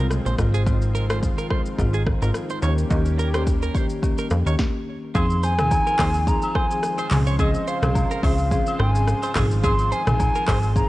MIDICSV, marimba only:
0, 0, Header, 1, 2, 480
1, 0, Start_track
1, 0, Key_signature, -4, "minor"
1, 0, Tempo, 560748
1, 568, Time_signature, 4, 2, 24, 8
1, 9321, End_track
2, 0, Start_track
2, 0, Title_t, "Marimba"
2, 0, Program_c, 0, 12
2, 0, Note_on_c, 0, 49, 74
2, 0, Note_on_c, 0, 56, 69
2, 0, Note_on_c, 0, 60, 71
2, 0, Note_on_c, 0, 65, 83
2, 300, Note_off_c, 0, 49, 0
2, 301, Note_off_c, 0, 56, 0
2, 302, Note_off_c, 0, 60, 0
2, 303, Note_off_c, 0, 65, 0
2, 324, Note_on_c, 0, 51, 78
2, 327, Note_on_c, 0, 56, 74
2, 328, Note_on_c, 0, 60, 72
2, 331, Note_on_c, 0, 65, 86
2, 549, Note_off_c, 0, 51, 0
2, 550, Note_off_c, 0, 56, 0
2, 550, Note_off_c, 0, 60, 0
2, 552, Note_off_c, 0, 65, 0
2, 565, Note_on_c, 0, 51, 94
2, 567, Note_on_c, 0, 56, 90
2, 568, Note_on_c, 0, 60, 85
2, 569, Note_on_c, 0, 65, 105
2, 728, Note_off_c, 0, 51, 0
2, 729, Note_off_c, 0, 56, 0
2, 729, Note_off_c, 0, 60, 0
2, 730, Note_off_c, 0, 65, 0
2, 936, Note_on_c, 0, 51, 76
2, 939, Note_on_c, 0, 56, 73
2, 940, Note_on_c, 0, 60, 70
2, 941, Note_on_c, 0, 65, 87
2, 1082, Note_off_c, 0, 51, 0
2, 1084, Note_off_c, 0, 56, 0
2, 1084, Note_off_c, 0, 60, 0
2, 1085, Note_off_c, 0, 65, 0
2, 1283, Note_on_c, 0, 51, 73
2, 1284, Note_on_c, 0, 56, 66
2, 1286, Note_on_c, 0, 60, 65
2, 1288, Note_on_c, 0, 65, 77
2, 1447, Note_off_c, 0, 51, 0
2, 1448, Note_off_c, 0, 56, 0
2, 1449, Note_off_c, 0, 60, 0
2, 1449, Note_off_c, 0, 65, 0
2, 1527, Note_on_c, 0, 51, 91
2, 1527, Note_on_c, 0, 56, 84
2, 1529, Note_on_c, 0, 60, 81
2, 1531, Note_on_c, 0, 65, 97
2, 1689, Note_off_c, 0, 51, 0
2, 1689, Note_off_c, 0, 56, 0
2, 1690, Note_off_c, 0, 60, 0
2, 1691, Note_off_c, 0, 65, 0
2, 1898, Note_on_c, 0, 51, 74
2, 1900, Note_on_c, 0, 56, 73
2, 1901, Note_on_c, 0, 60, 67
2, 1903, Note_on_c, 0, 65, 88
2, 2221, Note_off_c, 0, 51, 0
2, 2222, Note_off_c, 0, 56, 0
2, 2223, Note_off_c, 0, 60, 0
2, 2223, Note_off_c, 0, 65, 0
2, 2243, Note_on_c, 0, 51, 77
2, 2245, Note_on_c, 0, 58, 71
2, 2246, Note_on_c, 0, 61, 70
2, 2248, Note_on_c, 0, 67, 85
2, 2468, Note_off_c, 0, 51, 0
2, 2469, Note_off_c, 0, 58, 0
2, 2469, Note_off_c, 0, 61, 0
2, 2471, Note_off_c, 0, 67, 0
2, 2482, Note_on_c, 0, 51, 98
2, 2483, Note_on_c, 0, 58, 88
2, 2486, Note_on_c, 0, 61, 82
2, 2487, Note_on_c, 0, 67, 102
2, 2646, Note_off_c, 0, 51, 0
2, 2647, Note_off_c, 0, 58, 0
2, 2648, Note_off_c, 0, 61, 0
2, 2649, Note_off_c, 0, 67, 0
2, 2856, Note_on_c, 0, 51, 77
2, 2858, Note_on_c, 0, 58, 73
2, 2859, Note_on_c, 0, 61, 71
2, 2861, Note_on_c, 0, 67, 87
2, 3002, Note_off_c, 0, 51, 0
2, 3003, Note_off_c, 0, 58, 0
2, 3004, Note_off_c, 0, 61, 0
2, 3004, Note_off_c, 0, 67, 0
2, 3202, Note_on_c, 0, 51, 75
2, 3203, Note_on_c, 0, 58, 65
2, 3206, Note_on_c, 0, 61, 65
2, 3208, Note_on_c, 0, 67, 77
2, 3366, Note_off_c, 0, 51, 0
2, 3367, Note_off_c, 0, 58, 0
2, 3368, Note_off_c, 0, 61, 0
2, 3370, Note_off_c, 0, 67, 0
2, 3443, Note_on_c, 0, 51, 90
2, 3444, Note_on_c, 0, 58, 80
2, 3446, Note_on_c, 0, 61, 80
2, 3448, Note_on_c, 0, 67, 97
2, 3607, Note_off_c, 0, 51, 0
2, 3608, Note_off_c, 0, 58, 0
2, 3608, Note_off_c, 0, 61, 0
2, 3610, Note_off_c, 0, 67, 0
2, 3817, Note_on_c, 0, 51, 75
2, 3818, Note_on_c, 0, 58, 67
2, 3820, Note_on_c, 0, 61, 69
2, 3823, Note_on_c, 0, 67, 81
2, 3926, Note_off_c, 0, 51, 0
2, 3927, Note_off_c, 0, 58, 0
2, 3928, Note_off_c, 0, 61, 0
2, 3929, Note_off_c, 0, 67, 0
2, 4404, Note_on_c, 0, 53, 98
2, 4406, Note_on_c, 0, 60, 91
2, 4408, Note_on_c, 0, 63, 91
2, 4410, Note_on_c, 0, 68, 103
2, 4568, Note_off_c, 0, 53, 0
2, 4569, Note_off_c, 0, 60, 0
2, 4570, Note_off_c, 0, 63, 0
2, 4570, Note_off_c, 0, 68, 0
2, 4776, Note_on_c, 0, 53, 80
2, 4777, Note_on_c, 0, 60, 77
2, 4781, Note_on_c, 0, 63, 73
2, 4781, Note_on_c, 0, 68, 88
2, 4922, Note_off_c, 0, 53, 0
2, 4923, Note_off_c, 0, 60, 0
2, 4924, Note_off_c, 0, 63, 0
2, 4925, Note_off_c, 0, 68, 0
2, 5125, Note_on_c, 0, 53, 75
2, 5127, Note_on_c, 0, 60, 69
2, 5129, Note_on_c, 0, 63, 69
2, 5130, Note_on_c, 0, 68, 83
2, 5288, Note_off_c, 0, 53, 0
2, 5289, Note_off_c, 0, 60, 0
2, 5290, Note_off_c, 0, 63, 0
2, 5290, Note_off_c, 0, 68, 0
2, 5365, Note_on_c, 0, 53, 93
2, 5368, Note_on_c, 0, 60, 86
2, 5369, Note_on_c, 0, 63, 89
2, 5371, Note_on_c, 0, 68, 109
2, 5528, Note_off_c, 0, 53, 0
2, 5530, Note_off_c, 0, 60, 0
2, 5530, Note_off_c, 0, 63, 0
2, 5531, Note_off_c, 0, 68, 0
2, 5741, Note_on_c, 0, 53, 76
2, 5742, Note_on_c, 0, 60, 73
2, 5744, Note_on_c, 0, 63, 73
2, 5745, Note_on_c, 0, 68, 91
2, 6062, Note_off_c, 0, 53, 0
2, 6063, Note_off_c, 0, 60, 0
2, 6064, Note_off_c, 0, 63, 0
2, 6065, Note_off_c, 0, 68, 0
2, 6087, Note_on_c, 0, 53, 78
2, 6088, Note_on_c, 0, 60, 74
2, 6090, Note_on_c, 0, 61, 72
2, 6091, Note_on_c, 0, 68, 93
2, 6310, Note_off_c, 0, 53, 0
2, 6311, Note_off_c, 0, 60, 0
2, 6312, Note_off_c, 0, 61, 0
2, 6312, Note_off_c, 0, 68, 0
2, 6326, Note_on_c, 0, 53, 101
2, 6327, Note_on_c, 0, 60, 89
2, 6329, Note_on_c, 0, 61, 88
2, 6331, Note_on_c, 0, 68, 103
2, 6489, Note_off_c, 0, 53, 0
2, 6489, Note_off_c, 0, 60, 0
2, 6490, Note_off_c, 0, 61, 0
2, 6491, Note_off_c, 0, 68, 0
2, 6698, Note_on_c, 0, 53, 83
2, 6699, Note_on_c, 0, 60, 74
2, 6701, Note_on_c, 0, 61, 74
2, 6702, Note_on_c, 0, 68, 92
2, 6843, Note_off_c, 0, 53, 0
2, 6844, Note_off_c, 0, 60, 0
2, 6845, Note_off_c, 0, 61, 0
2, 6845, Note_off_c, 0, 68, 0
2, 7044, Note_on_c, 0, 53, 76
2, 7047, Note_on_c, 0, 60, 70
2, 7047, Note_on_c, 0, 61, 71
2, 7049, Note_on_c, 0, 68, 80
2, 7208, Note_off_c, 0, 53, 0
2, 7209, Note_off_c, 0, 60, 0
2, 7209, Note_off_c, 0, 61, 0
2, 7210, Note_off_c, 0, 68, 0
2, 7285, Note_on_c, 0, 53, 95
2, 7287, Note_on_c, 0, 60, 85
2, 7287, Note_on_c, 0, 61, 85
2, 7289, Note_on_c, 0, 68, 108
2, 7448, Note_off_c, 0, 53, 0
2, 7449, Note_off_c, 0, 60, 0
2, 7449, Note_off_c, 0, 61, 0
2, 7450, Note_off_c, 0, 68, 0
2, 7656, Note_on_c, 0, 53, 82
2, 7658, Note_on_c, 0, 60, 74
2, 7660, Note_on_c, 0, 61, 75
2, 7662, Note_on_c, 0, 68, 85
2, 7980, Note_off_c, 0, 53, 0
2, 7981, Note_off_c, 0, 60, 0
2, 7982, Note_off_c, 0, 61, 0
2, 7983, Note_off_c, 0, 68, 0
2, 8007, Note_on_c, 0, 53, 82
2, 8007, Note_on_c, 0, 60, 75
2, 8009, Note_on_c, 0, 63, 72
2, 8010, Note_on_c, 0, 68, 91
2, 8230, Note_off_c, 0, 53, 0
2, 8230, Note_off_c, 0, 60, 0
2, 8231, Note_off_c, 0, 63, 0
2, 8232, Note_off_c, 0, 68, 0
2, 8246, Note_on_c, 0, 53, 94
2, 8248, Note_on_c, 0, 60, 85
2, 8249, Note_on_c, 0, 63, 92
2, 8250, Note_on_c, 0, 68, 110
2, 8408, Note_off_c, 0, 53, 0
2, 8410, Note_off_c, 0, 60, 0
2, 8410, Note_off_c, 0, 63, 0
2, 8411, Note_off_c, 0, 68, 0
2, 8619, Note_on_c, 0, 53, 84
2, 8621, Note_on_c, 0, 60, 74
2, 8623, Note_on_c, 0, 63, 76
2, 8625, Note_on_c, 0, 68, 93
2, 8763, Note_off_c, 0, 53, 0
2, 8765, Note_off_c, 0, 60, 0
2, 8766, Note_off_c, 0, 63, 0
2, 8767, Note_off_c, 0, 68, 0
2, 8968, Note_on_c, 0, 53, 74
2, 8969, Note_on_c, 0, 60, 68
2, 8972, Note_on_c, 0, 63, 71
2, 8973, Note_on_c, 0, 68, 87
2, 9130, Note_off_c, 0, 53, 0
2, 9130, Note_off_c, 0, 60, 0
2, 9131, Note_off_c, 0, 63, 0
2, 9132, Note_off_c, 0, 68, 0
2, 9208, Note_on_c, 0, 53, 93
2, 9211, Note_on_c, 0, 60, 86
2, 9212, Note_on_c, 0, 63, 87
2, 9214, Note_on_c, 0, 68, 99
2, 9321, Note_off_c, 0, 53, 0
2, 9321, Note_off_c, 0, 60, 0
2, 9321, Note_off_c, 0, 63, 0
2, 9321, Note_off_c, 0, 68, 0
2, 9321, End_track
0, 0, End_of_file